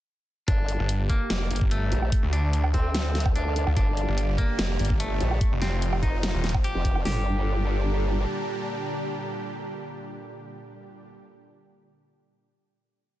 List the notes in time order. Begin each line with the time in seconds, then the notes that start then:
0.48 G1 D4 G4, kick, closed hi-hat
0.68 closed hi-hat
0.79 G1
0.89 D5, closed hi-hat
1.09 A#3, kick, closed hi-hat
1.22 A#5
1.30 F1, snare, closed hi-hat
1.51 G1, closed hi-hat
1.56 closed hi-hat
1.61 kick
1.71 A3, closed hi-hat
1.92 A#1, closed hi-hat
2.02 low woodblock
2.12 D4, kick, closed hi-hat
2.23 D2
2.33 D4 A4, closed hi-hat
2.42 D2 F5
2.53 closed hi-hat
2.64 low woodblock
2.74 D2 C4, kick, closed hi-hat
2.95 snare, closed hi-hat
3.15 snare, closed hi-hat
3.20 closed hi-hat
3.26 kick, low woodblock
3.36 D2 D4, closed hi-hat
3.56 closed hi-hat
3.67 D2, low woodblock
3.77 G1 A#2 D3 G3 D4 G4, kick, closed hi-hat
3.97 closed hi-hat
4.08 G1
4.18 closed hi-hat
4.38 A#3, kick, closed hi-hat
4.51 A#5
4.59 F1, snare, closed hi-hat
4.79 G1, closed hi-hat
4.85 closed hi-hat
4.90 kick
5.00 A3, closed hi-hat
5.21 A#1, closed hi-hat
5.31 low woodblock
5.41 A2 C3 F3 C4 F4, kick, closed hi-hat
5.52 F1
5.57 C5
5.62 C4, snare, closed hi-hat
5.72 F1
5.82 closed hi-hat
5.93 low woodblock
6.03 F1 D#4, kick, closed hi-hat
6.15 G5 A5
6.23 snare, closed hi-hat
6.34 D#1
6.44 snare, closed hi-hat
6.49 closed hi-hat
6.54 kick, low woodblock
6.64 G4, closed hi-hat
6.75 F1
6.85 kick, closed hi-hat
6.96 low woodblock
7.05 G1 A#2 D3 G3 D4 G4, snare, floor tom, open hi-hat
7.12 D5
7.18 A5
7.24 A#5